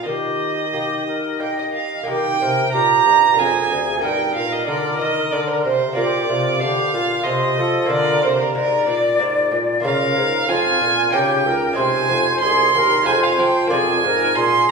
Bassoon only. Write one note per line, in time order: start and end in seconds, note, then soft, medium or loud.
0.05 1.75 D#3 medium
2.08 2.43 D#3 medium
2.42 2.76 C3 medium
2.74 3.06 A#2 medium
3.06 3.38 G2 medium
3.39 3.70 F2 medium
3.71 4.03 D2 medium
4.04 4.35 G2 medium
4.36 4.67 A#2 medium
4.68 5.01 D3 medium
4.99 5.32 D#3 medium
5.32 5.64 D3 medium
5.65 5.98 C3 medium
5.96 6.28 A#2 medium
6.28 6.63 C3 medium
6.62 6.93 D3 medium
6.93 7.28 A#2 medium
7.26 7.58 C3 medium
7.59 7.91 F3 medium
7.91 8.25 D3 medium
8.24 8.58 C3 medium
8.56 8.87 G#2 medium
8.88 9.21 A#2 medium
9.20 9.54 G#2 medium
9.53 9.84 A#2 medium
9.85 10.16 C#3 medium
10.17 10.48 G#2 medium
10.48 10.80 F2 medium
10.81 11.15 A#2 medium
11.14 11.45 C#3 medium
11.46 11.77 C#2 medium
11.77 12.09 C3 medium
12.09 12.41 F2 medium
12.42 12.73 C2 medium
12.74 13.06 D#2 medium
13.06 13.38 F2 medium
13.38 13.72 F3 medium
13.71 14.03 F2 medium
14.05 14.36 G#2 medium
14.36 14.68 A#2 medium